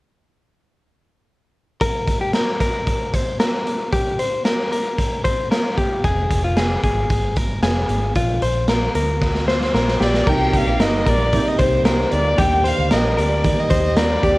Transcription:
1.81 A#4, kick, closed hi-hat
2.07 kick, closed hi-hat
2.21 G4
2.33 A#4, snare, closed hi-hat
2.60 A#4, kick, snare, closed hi-hat
2.86 kick, closed hi-hat
3.13 C5, kick, closed hi-hat
3.40 A#4, snare, closed hi-hat
3.67 closed hi-hat
3.92 G4, kick, closed hi-hat
4.19 C5, closed hi-hat
4.45 A#4, snare, closed hi-hat
4.72 A#4, closed hi-hat
4.98 kick, closed hi-hat
5.24 C5, kick, closed hi-hat
5.51 A#4, snare, closed hi-hat
5.78 G4, kick, closed hi-hat
6.04 F1 G#4, kick, closed hi-hat
6.31 F1, kick, closed hi-hat
6.44 F4
6.57 G#4, snare, closed hi-hat
6.83 G#1 G#4, kick, closed hi-hat
7.10 kick, closed hi-hat
7.36 A#4, kick, closed hi-hat
7.63 F1 G#4, snare, closed hi-hat
7.89 G#1, closed hi-hat
8.15 A#1 F4, kick, closed hi-hat
8.42 A#1 C5, closed hi-hat
8.68 A#4, snare, closed hi-hat
8.95 D2 A#4, closed hi-hat
9.21 kick, snare
9.35 snare
9.48 C5, snare
9.61 snare
9.74 A#1 A#4, snare
9.88 snare
10.00 A#1 G4 D5, snare
10.14 snare
10.27 C2 C3 G3 A#3 D#4 G4 A#4 G5, kick, crash
10.53 F5, kick, closed hi-hat
10.67 A#1 G4
10.79 G1 G3 A#3 D#4 G4 A#4 D#5, snare, closed hi-hat
11.05 A#1 A#3 D#4 G4 A#4 D5, kick, snare, closed hi-hat
11.33 C3 G3 A#3 D#4 G4, kick, closed hi-hat
11.48 D#5
11.59 C2 C5, kick, closed hi-hat
11.85 G3 A#3 D#4 G4 A#4, snare, closed hi-hat
12.12 D2 A#3 D#4 G4 D5, closed hi-hat
12.38 D#2 D#3 G3 A#3 D4 G4 G5, kick, closed hi-hat
12.64 C5 F5, closed hi-hat
12.79 D2
12.90 A#1 G3 A#3 D4 G4 A#4 D#5, snare, closed hi-hat
13.17 D2 A#3 D4 G4 A#4 D5, closed hi-hat
13.44 D#3 G3 A#3 G4, kick, closed hi-hat
13.59 D#5
13.70 D#2 C5, kick, closed hi-hat
13.97 G3 A#3 D4 G4 A#4 D5, snare, closed hi-hat
14.23 D#2 A#3 D4 G4, kick, closed hi-hat

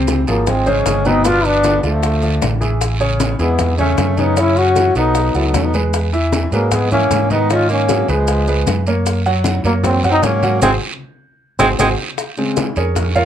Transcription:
Already playing: C#2 C3 C4 C5
0.07 high bongo, high conga, short guiro, maracas
0.27 G#1 F3 F#3 A#3 F4 G#4, high conga, short guiro, maracas
0.46 G#3 C4, high bongo, high conga, low conga, long guiro, maracas
0.66 C#3 G#3 C#4 C5, high conga, low conga, maracas
0.86 G1, high bongo, low bongo, high conga, short guiro, maracas
1.05 B2 B3 C4 D#4 B4, high conga, short guiro, maracas
1.24 B2 B3 D4 F4 B4, high bongo, long guiro, maracas
1.44 B3 D4, high conga, maracas
1.64 D3 D4 F4, high bongo, high conga, short guiro, maracas
1.83 D2 D3 F3 A3 D4 F4, high bongo, high conga, short guiro, maracas
2.03 high bongo, high conga, long guiro, maracas
2.22 D3 D4 F4, high bongo, high conga, maracas
2.42 A1, high bongo, low bongo, high conga, short guiro, maracas
2.60 E3 E4 G#4, high bongo, high conga, short guiro, maracas
2.81 high bongo, high conga, long guiro, maracas
3.00 C#3 C#4 C#5, high conga, maracas
3.20 high bongo, high conga, short guiro, maracas
3.39 E2 E3 G#3 B3 E4 G#4, high conga, short guiro, maracas
3.59 high bongo, high conga, low conga, long guiro, maracas
3.78 C#3 A3 C#4 C#5, high conga, low conga, maracas
3.98 F#2, high bongo, low bongo, high conga, short guiro, maracas
4.17 C#3 B3 C#4 D#4 C#5, high conga, short guiro, maracas
4.37 C#3 C#4 E4 C#5, high bongo, high conga, long guiro, maracas
4.56 C#4 F#4, high conga, maracas
4.76 E3 E4 F#4, high bongo, high conga, short guiro, maracas
4.95 B1 F#3 B3 D#4 F#4 A4, high bongo, high conga, short guiro, maracas
5.15 high bongo, high conga, long guiro, maracas
5.34 C#2 F#3 B3 E4 F#4 A4, high bongo, high conga, maracas
5.46 B3 D#4
5.54 E2 A3 C#4, high bongo, low bongo, high conga, short guiro, maracas
5.64 B3 D#4
5.74 G#3 G#4 B4, high bongo, high conga, short guiro, maracas
5.93 high bongo, high conga, long guiro, maracas
6.13 E3 E4 E5, high conga, maracas
6.32 high bongo, high conga, short guiro, maracas
6.52 G#2 F#3 G#3 A#3 G#4 B4, high conga, short guiro, maracas
6.71 G#3 B3, high bongo, high conga, low conga, long guiro, maracas
6.91 E3 A#3 C#4 E4 E5, high conga, low conga, maracas
7.10 G#2, high bongo, low bongo, high conga, short guiro, maracas
7.30 D#3 B3 D#4 D#5, high conga, short guiro, maracas
7.50 D#3 C#4 D#4 F4 D#5, high bongo, high conga, long guiro, maracas
7.69 A#3 C#4, high conga, maracas
7.88 F#3 F#4 G#4, high bongo, high conga, short guiro, maracas
8.08 C#2 F3 G#3 G#4 B4, high bongo, high conga, short guiro, maracas
8.27 high bongo, high conga, long guiro, maracas
8.47 G#3 G#4 B4, high bongo, high conga, maracas
8.67 F#2, high bongo, low bongo, high conga, short guiro, maracas
8.87 A#3 A#4 C#5, high bongo, short guiro, maracas
9.06 high bongo, high conga, long guiro, maracas
9.25 F#3 F#4 F#5, high conga, maracas
9.44 high bongo, high conga, short guiro, maracas
9.64 F#2 F#3 A#3 A#4 C#5, high conga, short guiro, maracas
9.83 F#3 C4, high bongo, high conga, low conga, long guiro, maracas
10.03 F#3 F#4 F#5, high conga, low conga, maracas
10.09 C4 D#4
10.22 G#2 A#3 C#4, high bongo, low bongo, high conga, short guiro, maracas
10.43 F#3 F#4 F#5, high conga, short guiro, maracas
10.62 G#1 G#3 C4 F#4 G#4 C5, high bongo, high conga, long guiro, maracas
11.59 G#1 G#3 C4 F#4 G#4 C5, high bongo, high conga, long guiro, maracas
11.79 G#1 G#3 C4 F#4 G#4 C5, high bongo, high conga, long guiro, maracas
12.17 high bongo, high conga, long guiro, maracas
12.37 C#3 G#3 C4, high conga, maracas
12.57 high bongo, high conga, short guiro, maracas
12.76 F2 C#4 G#4 A#4 C#5, high conga, short guiro, maracas
12.95 high bongo, high conga, low conga, long guiro, maracas
13.15 F4 A#4 C#5 F5, high conga, low conga, maracas

